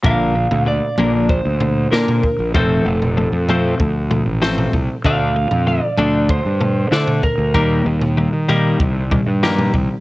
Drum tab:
SD |------------o---|------------o---|------------o---|------------o---|
T2 |------o---------|------o---------|------o---------|------------oo--|
FT |o--o--o---o--o--|o--o--o---o--o--|o--o--o---o--o--|o--o--o---o--o--|
BD |o-------o-----o-|o-------o-----o-|o-------o-----o-|o-------o-o---o-|